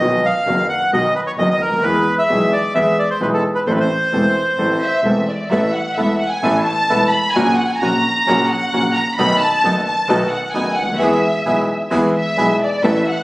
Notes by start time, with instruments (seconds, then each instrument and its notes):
Already playing: bandoneon D#5
0.01 grand piano B1 B2 D#3 F#3 B3 F#4, double bass B1
0.26 bandoneon F5
0.47 grand piano F#1 F#2 D#3 F#3 B3 F#4, double bass F#1
0.69 bandoneon F#5
0.92 double bass B1, grand piano B1 B2 D#3 F#3 B3 F#4, bandoneon D#5
1.15 bandoneon B4
1.27 bandoneon C#5
1.37 double bass F#1, grand piano F#1 F#2 D#3 F#3 B3 F#4, bandoneon D#5
1.50 bandoneon D#5
1.60 double bass D2, bandoneon A#4
1.68 grand piano C#2
1.73 grand piano D2
1.78 grand piano D#2
1.83 double bass E2, grand piano E2 E3 G#3 B3 G#4, bandoneon B4
2.19 bandoneon E5
2.29 double bass B1, grand piano B1 B2 E3 G#3 B3 G#4
2.53 bandoneon D5
2.74 double bass E2, grand piano E2 E3 G#3 B3 G#4, bandoneon E5
2.99 bandoneon D5
3.10 bandoneon C5
3.20 grand piano B1 B2 E3 G#3 B3 G#4, double bass B1, bandoneon B4
3.34 bandoneon A4
3.55 bandoneon B4
3.66 double bass A1, grand piano A1 A2 E3 A3 C4 A4, bandoneon C5
3.71 bandoneon B4
3.80 bandoneon C5
4.12 double bass E1, grand piano E1 E2 E3 A3 C4 A4
4.57 double bass A1, grand piano A1 A2 E3 A3 C4 A4
4.81 violin section E5
5.04 double bass E1, grand piano E1 E2 E3 A3 C4 A4
5.28 violin section D5
5.49 double bass A1, grand piano A1 A2 E3 A3 B3 A4, bandoneon B3 E4 A4, violin section E5
5.72 violin section F#5
5.95 double bass E1, grand piano E1 E2 E3 A3 B3 A4, bandoneon B3 E4 A4, violin section E5
6.19 violin section F#5
6.30 violin section G#5
6.43 double bass A1, grand piano A1 A2 E3 A3 B3 A4, bandoneon B3 E4 A4
6.62 violin section A5
6.89 double bass E1, grand piano E1 E2 E3 A3 B3 A4, bandoneon B3 E4 A4
7.10 violin section B5
7.31 violin section G#5
7.35 double bass A#1, grand piano A#1 A#2 C#3 F#3 A#3 F#4, bandoneon C#4 F#4 A#4
7.55 violin section F#5
7.67 violin section G#5
7.77 violin section A#5
7.81 double bass A#1, grand piano A#1 A#2 C#3 F#3 A#3 F#4, bandoneon C#4 F#4 A#4
8.27 double bass A#1, grand piano A#1 A#2 C#3 F#3 A#3 F#4, bandoneon C#4 F#4 A#4
8.47 violin section F#5
8.73 double bass A#1, grand piano A#1 A#2 C#3 F#3 A#3 F#4, bandoneon C#4 F#4 A#4
8.94 violin section A#5
9.15 double bass B1, bandoneon B3 D#4 A4, violin section B5
9.19 grand piano B1 B2 D#3 A3 B3 F#4
9.38 violin section A5
9.64 double bass F#1, grand piano F#1 F#2 D#3 A3 B3 F#4, bandoneon B3 D#4 A4
9.85 violin section A5
10.08 double bass B1, grand piano B1 B2 D#3 A3 B3 F#4, bandoneon B3 D#4 A4
10.29 violin section F#5
10.51 grand piano F#1 F#2 D#3 A3 B3 F#4, bandoneon B3 D#4 A4, violin section G#5
10.55 double bass F#1
10.75 double bass D2, violin section F#5
10.82 grand piano C#2
10.88 grand piano D2
10.94 grand piano D#2, violin section E5
10.99 double bass E2, grand piano E2 E3 G#3 B3 G#4, bandoneon B3 E4 G#4
11.45 double bass B1, grand piano B1 B2 E3 G#3 B3 G#4, bandoneon B3 E4 G#4
11.90 double bass E2, grand piano E2 E3 G#3 B3 G#4, bandoneon B3 E4 G#4
12.15 violin section E5
12.36 double bass B1, grand piano B1 B2 E3 G#3 B3 G#4, bandoneon B3 E4 G#4
12.62 violin section D5
12.83 double bass A1, grand piano A1 A2 E3 A3 B3 A4, bandoneon B3 E4 A4, violin section E5
13.08 violin section F#5